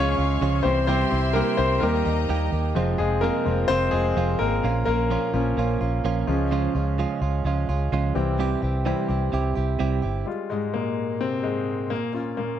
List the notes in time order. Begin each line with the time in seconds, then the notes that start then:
Already playing: C#2 F3 G#3 C#4 F4 G#4 C#5 F5 C#6
0.18 C#2 G#3 C#4 F4
0.41 C#2 C#3 F3 G#3 C#4 F4
0.63 C2 E3 G3 C4 E4 G4 C5 E5 C6
0.87 C3 G3 C4 E4 G4 C5
1.11 C2 C4 E4 G4
1.33 C3 G3 A#3 C4 E4 G4 A#4
1.57 C2 C4 E4 G4 C5
1.80 D#2 D#3 G3 A#3 D#4 G4 A#4 D#5 A#5
2.05 D#2 A#3 D#4 G4
2.29 D#2 D#3 G3 A#3 D#4 G4
2.52 D#2 A#3 D#4 G4
2.75 F1 F2 C3 F3 G#3 C4 F4
2.98 F1 F3 G#3 C4 F4 G#4
3.21 F2 C3 F3 G#3 A#3 C4 F4 A#4
3.45 F1 F3 G#3 C4 F4
3.68 F1 F3 G#3 C4 F4 C5
3.91 F1 F3 G#3 C4 F4 G#4
4.16 F1 F2 C3 F3 G#3 C4 F4
4.39 G#1 F3 G#3 A#3 C4 F4 A#4
4.63 A#1 A#2 F3 A#3 C#4 F4
4.85 A#1 A#3 C#4 F4 A#4
5.10 A#2 F3 A#3 C#4 F4
5.33 A#1 F3 A#3 C#4 F4
5.57 A#1 F3 A#3 C#4 F4
5.81 A#1 A#3 C#4 F4
6.04 A#1 A#2 F3 A#3 C#4 F4
6.27 C#2 F3 G#3 C#4 F4
6.51 C#3 F3 G#3 C#4 F4
6.75 C#2 G#3 C#4 F4
6.98 C#3 F3 G#3 C#4 F4
7.21 C#2 G#3 C#4 F4
7.45 C#2 F3 G#3 C#4 F4
7.68 C#2 G#3 C#4 F4
7.92 C#2 C#3 F3 G#3 C#4 F4
8.15 C2 E3 G3 C4 E4 G4
8.39 C3 G3 C4 E4 G4
8.62 C2 C4 E4 G4
8.85 C3 E3 G3 C4 E4 G4
9.09 C2 C4 E4 G4
9.32 C2 G3 C4 E4 G4
9.55 C2 C4 E4 G4
9.79 C2 C3 G3 C4 E4 G4
10.02 G1 C4 E4 G4
10.26 G3 G#3 F4
10.50 G#2 G#3
10.74 A#2 A#3
11.21 C3 C4
11.43 G#2 G#3
11.90 A#2 A#3
12.13 A#3 C#4 F4
12.37 A#2 A#3